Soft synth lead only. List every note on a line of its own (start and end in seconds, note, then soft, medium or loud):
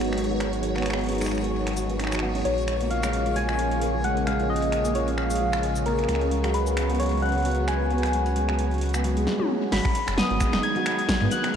2.45 2.92 C#5 loud
2.91 3.38 F5 loud
3.36 4.06 G#5 loud
4.04 4.26 F#5 loud
4.27 4.51 F5 loud
4.50 4.97 D#5 loud
4.95 5.17 C#5 medium
5.18 5.88 F5 loud
5.86 6.56 A#4 medium
6.54 7.01 B4 medium
7.00 7.22 C#5 medium
7.22 7.69 F#5 loud
7.68 9.27 G#5 loud
9.72 10.15 B5 loud
10.18 10.65 D#6 loud
10.63 11.33 G#6 loud
11.32 11.56 F#6 loud